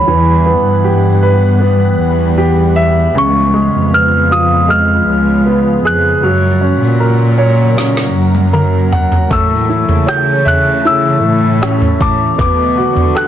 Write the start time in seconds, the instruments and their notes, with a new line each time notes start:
Already playing: ambient pad E3, grand piano G4, celesta B5
0.07 cello section E2, grand piano E3, ambient pad G3 B3 F#5
0.46 grand piano B3
0.66 cello section G2
0.84 grand piano G4
1.23 grand piano B4
1.60 grand piano B3
2.00 cello section E2
2.38 grand piano G4
2.76 grand piano E5
3.15 cello section C#2, grand piano C#3, ambient pad C#3 F3 G#3 B3 F4, celesta C#6
3.54 grand piano G#3
3.74 cello section F2
3.93 grand piano B3, celesta F6
4.31 grand piano F4, celesta D#6
4.68 grand piano G#3, celesta F6
5.08 cello section C#2
5.46 grand piano B3
5.84 cello section F2, grand piano G#4, celesta F#6
6.22 cello section F#2, grand piano F#3, ambient pad F#3 A#3 F#4 A#4
6.61 grand piano C#4
6.81 cello section A#2
7.00 grand piano A#4
7.38 grand piano C#5
7.77 grand piano C#4, snare
7.97 snare
8.16 cello section F#2
8.35 high tom
8.53 grand piano A#4, mid tom
8.92 grand piano F#5, floor tom
9.12 floor tom
9.30 cello section A2, ambient pad E3 A3 E4 A4, grand piano A3, celesta E6, kick, floor tom
9.69 grand piano E4
9.89 cello section C#3, floor tom
10.07 grand piano C#5, celesta G6, cross-stick
10.45 grand piano E5, celesta F#6, floor tom
10.85 grand piano E4, celesta E6
11.24 cello section A2
11.62 grand piano C#4, cross-stick
11.82 floor tom
12.01 cello section A2, grand piano A5, celesta D6, kick, floor tom
12.38 cello section B2, ambient pad D3 F#3 B3 F#4, grand piano B3, celesta D6, kick, floor tom
12.77 grand piano F#4
12.96 cello section D3, floor tom
13.15 grand piano A4, celesta F#6, cross-stick